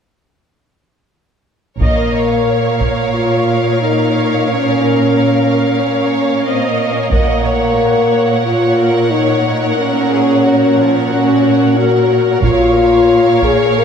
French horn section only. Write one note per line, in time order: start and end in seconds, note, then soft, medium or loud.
1.81 3.11 A#3 medium
3.15 3.80 F4 medium
3.81 4.46 D#4 soft
4.47 5.79 C#4 medium
5.80 6.45 C#4 medium
6.46 6.68 C4 soft
6.69 6.91 A#3 soft
6.91 7.13 C#4 soft
7.12 8.45 A#3 medium
8.46 9.11 F4 medium
9.11 9.78 D#4 soft
9.78 10.95 C#4 medium
11.12 11.77 C#4 medium
11.77 12.43 F#4 medium
12.43 13.40 F4 medium
13.44 13.76 G#4 medium
13.77 13.85 A#4 medium